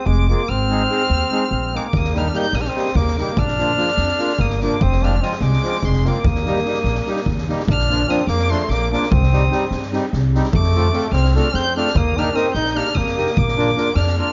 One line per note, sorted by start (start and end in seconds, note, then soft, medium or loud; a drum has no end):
0.06 0.32 F1 loud
0.06 0.29 G#3 medium
0.06 0.28 D6 loud
0.29 0.42 G#3 medium
0.29 0.51 A#3 medium
0.29 0.42 C4 medium
0.29 0.42 F4 medium
0.29 0.43 G#4 medium
0.29 0.50 D6 loud
0.49 0.84 G#1 medium
0.49 1.77 C4 loud
0.49 1.78 F6 loud
0.69 0.82 G#3 medium
0.69 0.82 C4 medium
0.69 0.83 D#4 medium
0.69 0.83 G#4 medium
0.89 1.02 G#3 medium
0.89 1.02 C4 medium
0.89 1.02 D#4 medium
0.89 1.03 G#4 medium
1.10 1.23 D#2 medium
1.31 1.44 G#3 medium
1.31 1.44 C4 medium
1.31 1.45 D#4 medium
1.31 1.45 G#4 medium
1.51 1.76 A#1 medium
1.74 1.87 G#3 medium
1.74 1.78 A#3 medium
1.74 1.87 C4 medium
1.74 1.87 D#4 medium
1.74 1.88 G#4 medium
1.74 1.80 D6 medium
1.79 1.83 A#3 medium
1.79 1.84 D6 medium
1.85 1.95 A#3 medium
1.85 1.99 D6 medium
1.93 2.30 D#2 medium
1.93 2.17 A#3 medium
1.93 kick medium
1.97 2.20 D#6 medium
2.04 snare soft
2.14 2.27 G3 medium
2.14 2.27 A#3 medium
2.14 2.36 D4 medium
2.14 2.28 D#4 medium
2.14 2.28 G4 medium
2.14 snare soft
2.18 2.38 F6 medium
2.33 2.46 G3 medium
2.33 2.47 A#3 medium
2.33 2.47 D#4 medium
2.33 2.57 D#4 medium
2.33 2.47 G4 medium
2.33 2.57 G6 medium
2.33 snare soft
2.43 snare soft
2.53 2.67 A#1 medium
2.53 2.63 A#3 medium
2.53 2.63 D#6 medium
2.53 snare soft
2.61 2.69 D4 medium
2.61 2.71 F6 medium
2.61 snare soft
2.68 2.97 C4 medium
2.68 2.98 D#6 medium
2.75 2.88 G3 medium
2.75 2.89 A#3 medium
2.75 2.89 D#4 medium
2.75 2.90 G4 medium
2.75 snare soft
2.86 snare soft
2.95 3.21 D#2 medium
2.95 3.18 A#3 medium
2.95 3.19 D6 loud
2.95 kick medium
2.95 snare soft
3.08 snare soft
3.18 3.31 G3 medium
3.18 3.31 A#3 medium
3.18 3.39 A#3 medium
3.18 3.32 D#4 medium
3.18 3.32 G4 medium
3.18 3.40 D6 medium
3.18 snare soft
3.37 3.73 A#1 medium
3.37 4.41 D4 loud
3.37 4.42 F6 loud
3.37 kick loud
3.48 snare soft
3.57 3.71 F3 medium
3.57 3.71 A#3 medium
3.57 3.72 D4 medium
3.57 3.72 F4 medium
3.57 snare soft
3.77 3.90 F3 medium
3.77 3.90 A#3 medium
3.77 3.91 D4 medium
3.77 3.91 F4 medium
3.77 snare soft
3.88 snare soft
3.97 4.11 F2 loud
3.97 snare soft
4.08 snare soft
4.18 4.32 F3 medium
4.18 4.32 A#3 medium
4.18 4.33 D4 medium
4.18 4.33 F4 medium
4.18 snare soft
4.29 snare soft
4.38 4.65 G1 medium
4.38 4.62 A#3 medium
4.38 4.63 D#6 medium
4.38 kick medium
4.38 snare soft
4.50 snare soft
4.61 4.75 F3 medium
4.61 4.75 A#3 medium
4.61 4.82 A#3 medium
4.61 4.76 D4 medium
4.61 4.76 F4 medium
4.61 4.84 D6 medium
4.61 snare soft
4.81 5.17 F1 loud
4.81 5.04 C4 medium
4.81 5.06 D#6 medium
4.81 kick loud
4.92 snare soft
5.01 5.15 F3 medium
5.01 5.15 G#3 medium
5.01 5.15 C4 medium
5.01 5.23 D4 medium
5.01 5.16 F4 medium
5.01 5.25 F6 medium
5.01 snare soft
5.21 5.34 F3 medium
5.21 5.34 G#3 medium
5.21 5.35 C4 medium
5.21 5.35 F4 medium
5.21 5.36 D#6 loud
5.21 snare soft
5.31 5.43 C4 medium
5.31 snare soft
5.36 5.44 D#6 medium
5.41 5.54 C2 loud
5.41 5.83 G#3 medium
5.41 5.87 D6 loud
5.41 snare soft
5.53 snare soft
5.63 5.77 F3 medium
5.63 5.77 G#3 medium
5.63 5.77 C4 medium
5.63 5.78 F4 medium
5.63 snare soft
5.72 snare soft
5.82 6.08 F1 medium
5.82 6.07 G#3 medium
5.82 6.10 C6 medium
5.82 kick medium
5.82 snare soft
5.93 snare soft
6.05 6.19 F3 medium
6.05 6.19 G#3 medium
6.05 6.25 A#3 medium
6.05 6.19 C4 medium
6.05 6.19 F4 medium
6.05 6.27 D6 medium
6.05 snare soft
6.24 6.60 D#2 loud
6.24 7.46 A#3 medium
6.24 7.47 D#6 medium
6.24 kick loud
6.35 snare soft
6.45 6.59 G3 medium
6.45 6.59 A#3 medium
6.45 6.60 D#4 medium
6.45 6.60 G4 medium
6.45 snare soft
6.56 snare soft
6.65 6.78 G3 medium
6.65 6.79 A#3 medium
6.65 6.79 D#4 medium
6.65 6.79 G4 medium
6.65 snare soft
6.74 snare soft
6.84 6.98 A#1 medium
6.84 snare soft
6.95 snare soft
7.06 7.20 G3 medium
7.06 7.20 A#3 medium
7.06 7.20 D#4 medium
7.06 7.21 G4 medium
7.06 snare soft
7.16 snare soft
7.26 7.52 D#2 medium
7.26 kick medium
7.26 snare soft
7.38 snare soft
7.48 7.62 G3 medium
7.48 7.62 A#3 medium
7.48 7.62 D#4 medium
7.48 7.63 G4 medium
7.48 snare soft
7.60 snare soft
7.67 8.03 A#1 medium
7.67 8.10 D4 medium
7.67 8.12 F6 loud
7.67 kick loud
7.79 snare soft
7.89 8.02 F3 medium
7.89 8.03 A#3 medium
7.89 8.03 D4 medium
7.89 8.03 F4 medium
7.89 snare soft
8.07 8.21 F3 medium
8.07 8.21 A#3 medium
8.07 8.28 C4 medium
8.07 8.22 D4 medium
8.07 8.22 F4 medium
8.07 8.28 D#6 loud
8.07 snare soft
8.27 8.53 F2 medium
8.27 8.52 A#3 medium
8.27 8.52 D6 loud
8.27 snare soft
8.39 snare soft
8.49 8.63 F3 medium
8.49 8.72 A3 medium
8.49 8.63 A#3 medium
8.49 8.63 D4 medium
8.49 8.64 F4 medium
8.49 8.71 C6 medium
8.49 snare soft
8.69 8.94 A#1 medium
8.69 8.91 A#3 medium
8.69 8.92 D6 loud
8.69 snare soft
8.91 9.05 F3 medium
8.91 9.10 A#3 medium
8.91 9.05 A#3 medium
8.91 9.05 D4 medium
8.91 9.06 F4 medium
8.91 9.11 D6 medium
8.91 snare soft
9.03 snare soft
9.11 9.47 C2 loud
9.11 9.89 C4 medium
9.11 9.89 D#6 loud
9.11 kick loud
9.23 snare soft
9.32 9.45 G3 medium
9.32 9.45 C4 medium
9.32 9.46 D#4 medium
9.32 9.46 G4 medium
9.32 snare soft
9.51 9.64 G3 medium
9.51 9.64 C4 medium
9.51 9.64 D#4 medium
9.51 9.65 G4 medium
9.51 snare soft
9.71 9.96 G2 medium
9.71 snare soft
9.82 snare soft
9.93 10.06 G3 medium
9.93 10.06 C4 medium
9.93 10.06 D#4 medium
9.93 10.07 G4 medium
9.93 snare soft
10.13 10.38 C2 medium
10.13 snare soft
10.34 10.47 G3 medium
10.34 10.48 C4 medium
10.34 10.48 D#4 medium
10.34 10.48 G4 medium
10.34 snare soft
10.43 snare soft
10.53 10.89 F2 medium
10.53 11.08 A3 medium
10.53 11.09 D6 loud
10.53 kick loud
10.63 snare soft
10.75 10.88 A3 medium
10.75 10.88 C4 medium
10.75 10.88 F4 medium
10.75 10.89 A4 medium
10.75 snare soft
10.93 11.06 A3 medium
10.93 11.06 C4 medium
10.93 11.07 F4 medium
10.93 11.07 A4 medium
10.93 snare soft
11.12 11.37 C2 loud
11.12 11.33 C4 medium
11.12 11.34 F6 loud
11.12 snare soft
11.24 snare soft
11.35 11.48 A3 medium
11.35 11.48 C4 medium
11.35 11.55 D4 medium
11.35 11.48 F4 medium
11.35 11.49 A4 medium
11.35 11.57 F6 loud
11.35 snare soft
11.53 11.79 F2 medium
11.53 11.76 C4 loud
11.53 11.77 G6 loud
11.53 snare soft
11.76 11.89 A3 medium
11.76 11.89 C4 medium
11.76 11.97 D4 medium
11.76 11.90 F4 medium
11.76 11.90 A4 medium
11.76 11.99 F6 loud
11.76 snare soft
11.87 snare soft
11.95 12.30 D#2 medium
11.95 12.18 A#3 medium
11.95 12.20 D#6 loud
11.95 kick medium
12.17 12.29 A#3 medium
12.17 12.37 D4 medium
12.17 12.29 D#4 medium
12.17 12.30 G4 medium
12.17 12.30 A#4 medium
12.17 12.37 F6 loud
12.17 snare soft
12.34 12.47 A#3 medium
12.34 12.54 C4 medium
12.34 12.48 D#4 medium
12.34 12.48 G4 medium
12.34 12.48 A#4 medium
12.34 12.54 D#6 loud
12.34 snare soft
12.54 12.79 A#1 medium
12.54 12.77 D#4 loud
12.54 12.78 G6 loud
12.54 snare soft
12.65 snare soft
12.76 12.89 A#3 medium
12.76 12.99 D4 medium
12.76 12.89 D#4 medium
12.76 12.90 G4 medium
12.76 12.90 A#4 medium
12.76 12.97 F6 loud
12.76 snare soft
12.85 snare soft
12.95 13.21 F2 medium
12.95 13.38 A#3 medium
12.95 13.40 D#6 loud
12.95 kick medium
12.95 snare soft
13.06 snare soft
13.16 13.30 A#3 medium
13.16 13.31 D#4 medium
13.16 13.31 G4 medium
13.16 13.31 A#4 medium
13.16 snare soft
13.27 snare soft
13.37 13.72 A#1 medium
13.37 13.96 A#3 medium
13.37 13.97 D6 loud
13.37 kick medium
13.48 snare soft
13.56 13.70 A#3 medium
13.56 13.70 D4 medium
13.56 13.70 F4 medium
13.56 13.71 A#4 medium
13.56 snare soft
13.76 13.89 A#3 medium
13.76 13.89 D4 medium
13.76 13.90 F4 medium
13.76 13.90 A#4 medium
13.76 snare soft
13.95 14.20 F2 medium
13.95 14.17 D4 medium
13.95 14.18 F6 loud
13.95 snare soft
14.07 snare soft
14.17 14.30 A#3 medium
14.17 14.31 D4 medium
14.17 14.33 D4 medium
14.17 14.31 F4 medium
14.17 14.31 A#4 medium
14.17 14.33 F6 loud